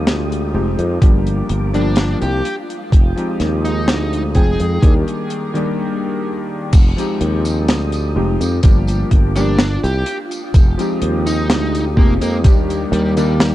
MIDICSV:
0, 0, Header, 1, 6, 480
1, 0, Start_track
1, 0, Tempo, 952381
1, 1474, Time_signature, 4, 2, 24, 8
1, 6829, End_track
2, 0, Start_track
2, 0, Title_t, "String machine"
2, 0, Program_c, 0, 50
2, 0, Note_on_c, 0, 56, 79
2, 0, Note_on_c, 0, 65, 84
2, 0, Note_on_c, 0, 79, 79
2, 0, Note_on_c, 0, 87, 93
2, 503, Note_off_c, 0, 87, 0
2, 504, Note_off_c, 0, 56, 0
2, 504, Note_off_c, 0, 65, 0
2, 513, Note_on_c, 0, 65, 86
2, 513, Note_on_c, 0, 70, 79
2, 513, Note_on_c, 0, 86, 92
2, 1226, Note_off_c, 0, 70, 0
2, 1226, Note_off_c, 0, 86, 0
2, 1234, Note_on_c, 0, 56, 76
2, 1234, Note_on_c, 0, 87, 92
2, 2414, Note_off_c, 0, 65, 0
2, 2422, Note_off_c, 0, 56, 0
2, 2422, Note_off_c, 0, 87, 0
2, 2433, Note_on_c, 0, 51, 78
2, 2433, Note_on_c, 0, 70, 75
2, 2433, Note_on_c, 0, 86, 89
2, 2893, Note_off_c, 0, 79, 0
2, 2908, Note_off_c, 0, 86, 0
2, 2909, Note_off_c, 0, 51, 0
2, 2909, Note_off_c, 0, 70, 0
2, 3392, Note_on_c, 0, 56, 79
2, 3392, Note_on_c, 0, 79, 77
2, 3392, Note_on_c, 0, 87, 97
2, 3393, Note_on_c, 0, 65, 90
2, 4343, Note_off_c, 0, 56, 0
2, 4343, Note_off_c, 0, 87, 0
2, 4351, Note_on_c, 0, 70, 82
2, 4352, Note_on_c, 0, 86, 95
2, 5065, Note_off_c, 0, 70, 0
2, 5066, Note_off_c, 0, 86, 0
2, 5074, Note_on_c, 0, 56, 77
2, 5074, Note_on_c, 0, 87, 92
2, 6253, Note_off_c, 0, 65, 0
2, 6262, Note_off_c, 0, 56, 0
2, 6262, Note_off_c, 0, 87, 0
2, 6271, Note_on_c, 0, 51, 90
2, 6272, Note_on_c, 0, 70, 84
2, 6272, Note_on_c, 0, 86, 97
2, 6829, Note_off_c, 0, 51, 0
2, 6829, Note_off_c, 0, 70, 0
2, 6829, Note_off_c, 0, 79, 0
2, 6829, Note_off_c, 0, 86, 0
2, 6829, End_track
3, 0, Start_track
3, 0, Title_t, "Lead electric guitar"
3, 0, Program_c, 1, 29
3, 881, Note_on_c, 1, 62, 86
3, 1095, Note_off_c, 1, 62, 0
3, 1118, Note_on_c, 1, 67, 92
3, 1283, Note_off_c, 1, 67, 0
3, 1838, Note_on_c, 1, 63, 88
3, 2124, Note_off_c, 1, 63, 0
3, 2195, Note_on_c, 1, 68, 84
3, 2484, Note_off_c, 1, 68, 0
3, 4716, Note_on_c, 1, 62, 91
3, 4932, Note_off_c, 1, 62, 0
3, 4957, Note_on_c, 1, 67, 91
3, 5123, Note_off_c, 1, 67, 0
3, 5677, Note_on_c, 1, 63, 88
3, 5964, Note_off_c, 1, 63, 0
3, 6033, Note_on_c, 1, 58, 87
3, 6113, Note_off_c, 1, 58, 0
3, 6158, Note_on_c, 1, 58, 77
3, 6232, Note_off_c, 1, 58, 0
3, 6515, Note_on_c, 1, 55, 95
3, 6614, Note_off_c, 1, 55, 0
3, 6640, Note_on_c, 1, 55, 89
3, 6829, Note_off_c, 1, 55, 0
3, 6829, End_track
4, 0, Start_track
4, 0, Title_t, "Electric grand piano"
4, 0, Program_c, 2, 2
4, 0, Note_on_c, 2, 53, 79
4, 0, Note_on_c, 2, 56, 69
4, 0, Note_on_c, 2, 60, 72
4, 0, Note_on_c, 2, 63, 71
4, 0, Note_on_c, 2, 67, 86
4, 242, Note_off_c, 2, 53, 0
4, 244, Note_off_c, 2, 56, 0
4, 246, Note_off_c, 2, 60, 0
4, 248, Note_off_c, 2, 63, 0
4, 250, Note_off_c, 2, 67, 0
4, 270, Note_on_c, 2, 53, 73
4, 271, Note_on_c, 2, 56, 70
4, 274, Note_on_c, 2, 60, 69
4, 275, Note_on_c, 2, 63, 70
4, 277, Note_on_c, 2, 67, 86
4, 484, Note_off_c, 2, 53, 0
4, 485, Note_off_c, 2, 56, 0
4, 486, Note_off_c, 2, 60, 0
4, 487, Note_off_c, 2, 63, 0
4, 488, Note_off_c, 2, 67, 0
4, 511, Note_on_c, 2, 53, 80
4, 512, Note_on_c, 2, 55, 73
4, 515, Note_on_c, 2, 58, 74
4, 516, Note_on_c, 2, 62, 71
4, 518, Note_on_c, 2, 67, 89
4, 847, Note_off_c, 2, 53, 0
4, 848, Note_off_c, 2, 55, 0
4, 849, Note_off_c, 2, 58, 0
4, 850, Note_off_c, 2, 62, 0
4, 851, Note_off_c, 2, 67, 0
4, 874, Note_on_c, 2, 53, 95
4, 876, Note_on_c, 2, 55, 88
4, 878, Note_on_c, 2, 58, 84
4, 880, Note_on_c, 2, 62, 86
4, 882, Note_on_c, 2, 67, 100
4, 1218, Note_off_c, 2, 53, 0
4, 1219, Note_off_c, 2, 55, 0
4, 1219, Note_off_c, 2, 58, 0
4, 1220, Note_off_c, 2, 62, 0
4, 1221, Note_off_c, 2, 67, 0
4, 1591, Note_on_c, 2, 53, 80
4, 1595, Note_on_c, 2, 56, 76
4, 1599, Note_on_c, 2, 60, 71
4, 1603, Note_on_c, 2, 63, 74
4, 1606, Note_on_c, 2, 67, 88
4, 2162, Note_off_c, 2, 53, 0
4, 2164, Note_off_c, 2, 56, 0
4, 2166, Note_off_c, 2, 60, 0
4, 2168, Note_off_c, 2, 63, 0
4, 2170, Note_off_c, 2, 67, 0
4, 2189, Note_on_c, 2, 53, 75
4, 2191, Note_on_c, 2, 56, 73
4, 2193, Note_on_c, 2, 60, 70
4, 2195, Note_on_c, 2, 63, 72
4, 2197, Note_on_c, 2, 79, 83
4, 2404, Note_off_c, 2, 53, 0
4, 2404, Note_off_c, 2, 56, 0
4, 2405, Note_off_c, 2, 60, 0
4, 2406, Note_off_c, 2, 63, 0
4, 2408, Note_off_c, 2, 79, 0
4, 2428, Note_on_c, 2, 51, 81
4, 2431, Note_on_c, 2, 55, 75
4, 2433, Note_on_c, 2, 58, 76
4, 2434, Note_on_c, 2, 62, 74
4, 2436, Note_on_c, 2, 67, 92
4, 2766, Note_off_c, 2, 51, 0
4, 2767, Note_off_c, 2, 55, 0
4, 2768, Note_off_c, 2, 58, 0
4, 2769, Note_off_c, 2, 62, 0
4, 2770, Note_off_c, 2, 67, 0
4, 2791, Note_on_c, 2, 51, 90
4, 2795, Note_on_c, 2, 55, 87
4, 2799, Note_on_c, 2, 58, 85
4, 2803, Note_on_c, 2, 62, 85
4, 2806, Note_on_c, 2, 67, 104
4, 3376, Note_off_c, 2, 51, 0
4, 3378, Note_off_c, 2, 55, 0
4, 3380, Note_off_c, 2, 58, 0
4, 3382, Note_off_c, 2, 62, 0
4, 3384, Note_off_c, 2, 67, 0
4, 3510, Note_on_c, 2, 53, 83
4, 3514, Note_on_c, 2, 56, 75
4, 3518, Note_on_c, 2, 60, 75
4, 3521, Note_on_c, 2, 63, 75
4, 3526, Note_on_c, 2, 67, 88
4, 4082, Note_off_c, 2, 53, 0
4, 4084, Note_off_c, 2, 56, 0
4, 4086, Note_off_c, 2, 60, 0
4, 4087, Note_off_c, 2, 63, 0
4, 4090, Note_off_c, 2, 67, 0
4, 4109, Note_on_c, 2, 53, 79
4, 4111, Note_on_c, 2, 56, 73
4, 4112, Note_on_c, 2, 60, 69
4, 4114, Note_on_c, 2, 63, 71
4, 4116, Note_on_c, 2, 67, 86
4, 4324, Note_off_c, 2, 53, 0
4, 4325, Note_off_c, 2, 56, 0
4, 4325, Note_off_c, 2, 60, 0
4, 4326, Note_off_c, 2, 63, 0
4, 4327, Note_off_c, 2, 67, 0
4, 4349, Note_on_c, 2, 53, 84
4, 4351, Note_on_c, 2, 55, 77
4, 4354, Note_on_c, 2, 58, 76
4, 4355, Note_on_c, 2, 62, 76
4, 4358, Note_on_c, 2, 67, 95
4, 4686, Note_off_c, 2, 53, 0
4, 4687, Note_off_c, 2, 55, 0
4, 4689, Note_off_c, 2, 58, 0
4, 4689, Note_off_c, 2, 62, 0
4, 4691, Note_off_c, 2, 67, 0
4, 4714, Note_on_c, 2, 53, 90
4, 4716, Note_on_c, 2, 55, 80
4, 4718, Note_on_c, 2, 58, 83
4, 4720, Note_on_c, 2, 62, 82
4, 4722, Note_on_c, 2, 67, 101
4, 4820, Note_off_c, 2, 53, 0
4, 4821, Note_off_c, 2, 55, 0
4, 4822, Note_off_c, 2, 58, 0
4, 4823, Note_off_c, 2, 62, 0
4, 4824, Note_off_c, 2, 67, 0
4, 5430, Note_on_c, 2, 53, 82
4, 5435, Note_on_c, 2, 56, 75
4, 5438, Note_on_c, 2, 60, 75
4, 5442, Note_on_c, 2, 63, 76
4, 5446, Note_on_c, 2, 67, 91
4, 6002, Note_off_c, 2, 53, 0
4, 6004, Note_off_c, 2, 56, 0
4, 6006, Note_off_c, 2, 60, 0
4, 6008, Note_off_c, 2, 63, 0
4, 6010, Note_off_c, 2, 67, 0
4, 6028, Note_on_c, 2, 53, 79
4, 6031, Note_on_c, 2, 56, 71
4, 6032, Note_on_c, 2, 60, 71
4, 6034, Note_on_c, 2, 63, 72
4, 6036, Note_on_c, 2, 67, 88
4, 6243, Note_off_c, 2, 53, 0
4, 6245, Note_off_c, 2, 56, 0
4, 6245, Note_off_c, 2, 60, 0
4, 6246, Note_off_c, 2, 63, 0
4, 6247, Note_off_c, 2, 67, 0
4, 6269, Note_on_c, 2, 51, 83
4, 6271, Note_on_c, 2, 55, 78
4, 6273, Note_on_c, 2, 58, 77
4, 6275, Note_on_c, 2, 62, 78
4, 6277, Note_on_c, 2, 67, 93
4, 6606, Note_off_c, 2, 51, 0
4, 6607, Note_off_c, 2, 55, 0
4, 6608, Note_off_c, 2, 58, 0
4, 6609, Note_off_c, 2, 62, 0
4, 6610, Note_off_c, 2, 67, 0
4, 6634, Note_on_c, 2, 51, 90
4, 6636, Note_on_c, 2, 55, 86
4, 6639, Note_on_c, 2, 58, 83
4, 6640, Note_on_c, 2, 62, 86
4, 6642, Note_on_c, 2, 67, 100
4, 6740, Note_off_c, 2, 51, 0
4, 6741, Note_off_c, 2, 55, 0
4, 6742, Note_off_c, 2, 58, 0
4, 6743, Note_off_c, 2, 62, 0
4, 6744, Note_off_c, 2, 67, 0
4, 6829, End_track
5, 0, Start_track
5, 0, Title_t, "Fretless electric bass"
5, 0, Program_c, 3, 35
5, 35, Note_on_c, 3, 38, 85
5, 275, Note_on_c, 3, 29, 79
5, 282, Note_off_c, 3, 38, 0
5, 375, Note_off_c, 3, 29, 0
5, 398, Note_on_c, 3, 41, 78
5, 492, Note_off_c, 3, 41, 0
5, 513, Note_on_c, 3, 31, 78
5, 709, Note_off_c, 3, 31, 0
5, 755, Note_on_c, 3, 31, 87
5, 1081, Note_off_c, 3, 31, 0
5, 1119, Note_on_c, 3, 36, 101
5, 1212, Note_off_c, 3, 36, 0
5, 1473, Note_on_c, 3, 29, 95
5, 1574, Note_off_c, 3, 29, 0
5, 1713, Note_on_c, 3, 39, 77
5, 1954, Note_off_c, 3, 39, 0
5, 1954, Note_on_c, 3, 38, 80
5, 2193, Note_on_c, 3, 29, 78
5, 2201, Note_off_c, 3, 38, 0
5, 2294, Note_off_c, 3, 29, 0
5, 2319, Note_on_c, 3, 41, 81
5, 2412, Note_off_c, 3, 41, 0
5, 2432, Note_on_c, 3, 39, 97
5, 2534, Note_off_c, 3, 39, 0
5, 3393, Note_on_c, 3, 29, 93
5, 3494, Note_off_c, 3, 29, 0
5, 3633, Note_on_c, 3, 39, 80
5, 3873, Note_off_c, 3, 39, 0
5, 3873, Note_on_c, 3, 38, 82
5, 4113, Note_on_c, 3, 29, 81
5, 4121, Note_off_c, 3, 38, 0
5, 4214, Note_off_c, 3, 29, 0
5, 4238, Note_on_c, 3, 41, 80
5, 4331, Note_off_c, 3, 41, 0
5, 4352, Note_on_c, 3, 31, 79
5, 4549, Note_off_c, 3, 31, 0
5, 4593, Note_on_c, 3, 31, 89
5, 4920, Note_off_c, 3, 31, 0
5, 4958, Note_on_c, 3, 36, 105
5, 5051, Note_off_c, 3, 36, 0
5, 5313, Note_on_c, 3, 29, 99
5, 5414, Note_off_c, 3, 29, 0
5, 5553, Note_on_c, 3, 39, 77
5, 5792, Note_off_c, 3, 39, 0
5, 5792, Note_on_c, 3, 38, 83
5, 6033, Note_on_c, 3, 29, 83
5, 6041, Note_off_c, 3, 38, 0
5, 6135, Note_off_c, 3, 29, 0
5, 6157, Note_on_c, 3, 41, 80
5, 6273, Note_off_c, 3, 41, 0
5, 6273, Note_on_c, 3, 39, 102
5, 6469, Note_off_c, 3, 39, 0
5, 6512, Note_on_c, 3, 39, 105
5, 6829, Note_off_c, 3, 39, 0
5, 6829, End_track
6, 0, Start_track
6, 0, Title_t, "Drums"
6, 35, Note_on_c, 9, 42, 96
6, 36, Note_on_c, 9, 38, 100
6, 86, Note_off_c, 9, 38, 0
6, 86, Note_off_c, 9, 42, 0
6, 162, Note_on_c, 9, 42, 55
6, 212, Note_off_c, 9, 42, 0
6, 397, Note_on_c, 9, 42, 49
6, 447, Note_off_c, 9, 42, 0
6, 513, Note_on_c, 9, 36, 110
6, 514, Note_on_c, 9, 42, 97
6, 563, Note_off_c, 9, 36, 0
6, 564, Note_off_c, 9, 42, 0
6, 638, Note_on_c, 9, 42, 49
6, 689, Note_off_c, 9, 42, 0
6, 753, Note_on_c, 9, 42, 70
6, 803, Note_off_c, 9, 42, 0
6, 878, Note_on_c, 9, 42, 55
6, 929, Note_off_c, 9, 42, 0
6, 986, Note_on_c, 9, 42, 95
6, 992, Note_on_c, 9, 38, 108
6, 1037, Note_off_c, 9, 42, 0
6, 1042, Note_off_c, 9, 38, 0
6, 1117, Note_on_c, 9, 42, 49
6, 1167, Note_off_c, 9, 42, 0
6, 1236, Note_on_c, 9, 42, 78
6, 1286, Note_off_c, 9, 42, 0
6, 1361, Note_on_c, 9, 42, 53
6, 1411, Note_off_c, 9, 42, 0
6, 1473, Note_on_c, 9, 36, 111
6, 1477, Note_on_c, 9, 42, 102
6, 1523, Note_off_c, 9, 36, 0
6, 1527, Note_off_c, 9, 42, 0
6, 1600, Note_on_c, 9, 42, 51
6, 1651, Note_off_c, 9, 42, 0
6, 1713, Note_on_c, 9, 42, 76
6, 1715, Note_on_c, 9, 38, 30
6, 1763, Note_off_c, 9, 42, 0
6, 1766, Note_off_c, 9, 38, 0
6, 1841, Note_on_c, 9, 42, 50
6, 1891, Note_off_c, 9, 42, 0
6, 1954, Note_on_c, 9, 38, 113
6, 1955, Note_on_c, 9, 42, 94
6, 2005, Note_off_c, 9, 38, 0
6, 2005, Note_off_c, 9, 42, 0
6, 2081, Note_on_c, 9, 42, 51
6, 2132, Note_off_c, 9, 42, 0
6, 2190, Note_on_c, 9, 42, 54
6, 2193, Note_on_c, 9, 36, 57
6, 2241, Note_off_c, 9, 42, 0
6, 2243, Note_off_c, 9, 36, 0
6, 2317, Note_on_c, 9, 42, 57
6, 2367, Note_off_c, 9, 42, 0
6, 2432, Note_on_c, 9, 36, 115
6, 2434, Note_on_c, 9, 42, 98
6, 2483, Note_off_c, 9, 36, 0
6, 2485, Note_off_c, 9, 42, 0
6, 2559, Note_on_c, 9, 42, 51
6, 2610, Note_off_c, 9, 42, 0
6, 2672, Note_on_c, 9, 42, 77
6, 2723, Note_off_c, 9, 42, 0
6, 2799, Note_on_c, 9, 42, 53
6, 2849, Note_off_c, 9, 42, 0
6, 3390, Note_on_c, 9, 49, 92
6, 3391, Note_on_c, 9, 42, 107
6, 3392, Note_on_c, 9, 36, 113
6, 3392, Note_on_c, 9, 54, 50
6, 3440, Note_off_c, 9, 49, 0
6, 3441, Note_off_c, 9, 42, 0
6, 3443, Note_off_c, 9, 36, 0
6, 3443, Note_off_c, 9, 54, 0
6, 3519, Note_on_c, 9, 42, 57
6, 3522, Note_on_c, 9, 54, 29
6, 3570, Note_off_c, 9, 42, 0
6, 3573, Note_off_c, 9, 54, 0
6, 3633, Note_on_c, 9, 42, 72
6, 3683, Note_off_c, 9, 42, 0
6, 3755, Note_on_c, 9, 54, 60
6, 3758, Note_on_c, 9, 42, 59
6, 3805, Note_off_c, 9, 54, 0
6, 3808, Note_off_c, 9, 42, 0
6, 3873, Note_on_c, 9, 42, 100
6, 3873, Note_on_c, 9, 54, 49
6, 3874, Note_on_c, 9, 38, 114
6, 3923, Note_off_c, 9, 54, 0
6, 3924, Note_off_c, 9, 42, 0
6, 3925, Note_off_c, 9, 38, 0
6, 3993, Note_on_c, 9, 42, 57
6, 4000, Note_on_c, 9, 54, 31
6, 4044, Note_off_c, 9, 42, 0
6, 4050, Note_off_c, 9, 54, 0
6, 4238, Note_on_c, 9, 42, 60
6, 4240, Note_on_c, 9, 54, 61
6, 4288, Note_off_c, 9, 42, 0
6, 4290, Note_off_c, 9, 54, 0
6, 4349, Note_on_c, 9, 42, 107
6, 4351, Note_on_c, 9, 54, 48
6, 4352, Note_on_c, 9, 36, 126
6, 4399, Note_off_c, 9, 42, 0
6, 4401, Note_off_c, 9, 54, 0
6, 4403, Note_off_c, 9, 36, 0
6, 4473, Note_on_c, 9, 54, 29
6, 4477, Note_on_c, 9, 42, 62
6, 4523, Note_off_c, 9, 54, 0
6, 4528, Note_off_c, 9, 42, 0
6, 4592, Note_on_c, 9, 42, 80
6, 4593, Note_on_c, 9, 36, 61
6, 4642, Note_off_c, 9, 42, 0
6, 4643, Note_off_c, 9, 36, 0
6, 4715, Note_on_c, 9, 42, 55
6, 4718, Note_on_c, 9, 54, 54
6, 4765, Note_off_c, 9, 42, 0
6, 4769, Note_off_c, 9, 54, 0
6, 4831, Note_on_c, 9, 38, 123
6, 4833, Note_on_c, 9, 42, 93
6, 4837, Note_on_c, 9, 54, 51
6, 4881, Note_off_c, 9, 38, 0
6, 4884, Note_off_c, 9, 42, 0
6, 4887, Note_off_c, 9, 54, 0
6, 4959, Note_on_c, 9, 54, 31
6, 4960, Note_on_c, 9, 42, 57
6, 5009, Note_off_c, 9, 54, 0
6, 5010, Note_off_c, 9, 42, 0
6, 5071, Note_on_c, 9, 42, 86
6, 5121, Note_off_c, 9, 42, 0
6, 5197, Note_on_c, 9, 42, 55
6, 5199, Note_on_c, 9, 54, 51
6, 5247, Note_off_c, 9, 42, 0
6, 5249, Note_off_c, 9, 54, 0
6, 5312, Note_on_c, 9, 54, 44
6, 5313, Note_on_c, 9, 36, 116
6, 5313, Note_on_c, 9, 42, 89
6, 5362, Note_off_c, 9, 54, 0
6, 5363, Note_off_c, 9, 36, 0
6, 5364, Note_off_c, 9, 42, 0
6, 5438, Note_on_c, 9, 42, 59
6, 5438, Note_on_c, 9, 54, 28
6, 5488, Note_off_c, 9, 42, 0
6, 5488, Note_off_c, 9, 54, 0
6, 5552, Note_on_c, 9, 42, 83
6, 5603, Note_off_c, 9, 42, 0
6, 5678, Note_on_c, 9, 54, 51
6, 5679, Note_on_c, 9, 42, 58
6, 5728, Note_off_c, 9, 54, 0
6, 5730, Note_off_c, 9, 42, 0
6, 5794, Note_on_c, 9, 38, 112
6, 5795, Note_on_c, 9, 54, 50
6, 5796, Note_on_c, 9, 42, 108
6, 5845, Note_off_c, 9, 38, 0
6, 5846, Note_off_c, 9, 42, 0
6, 5846, Note_off_c, 9, 54, 0
6, 5921, Note_on_c, 9, 42, 59
6, 5921, Note_on_c, 9, 54, 29
6, 5971, Note_off_c, 9, 42, 0
6, 5971, Note_off_c, 9, 54, 0
6, 6033, Note_on_c, 9, 36, 64
6, 6083, Note_off_c, 9, 36, 0
6, 6156, Note_on_c, 9, 42, 57
6, 6158, Note_on_c, 9, 54, 52
6, 6206, Note_off_c, 9, 42, 0
6, 6208, Note_off_c, 9, 54, 0
6, 6271, Note_on_c, 9, 42, 112
6, 6273, Note_on_c, 9, 36, 125
6, 6273, Note_on_c, 9, 54, 49
6, 6322, Note_off_c, 9, 42, 0
6, 6323, Note_off_c, 9, 36, 0
6, 6324, Note_off_c, 9, 54, 0
6, 6402, Note_on_c, 9, 42, 53
6, 6402, Note_on_c, 9, 54, 27
6, 6452, Note_off_c, 9, 42, 0
6, 6452, Note_off_c, 9, 54, 0
6, 6516, Note_on_c, 9, 42, 85
6, 6566, Note_off_c, 9, 42, 0
6, 6637, Note_on_c, 9, 42, 58
6, 6638, Note_on_c, 9, 54, 53
6, 6687, Note_off_c, 9, 42, 0
6, 6688, Note_off_c, 9, 54, 0
6, 6754, Note_on_c, 9, 42, 94
6, 6755, Note_on_c, 9, 38, 127
6, 6756, Note_on_c, 9, 54, 48
6, 6805, Note_off_c, 9, 38, 0
6, 6805, Note_off_c, 9, 42, 0
6, 6806, Note_off_c, 9, 54, 0
6, 6829, End_track
0, 0, End_of_file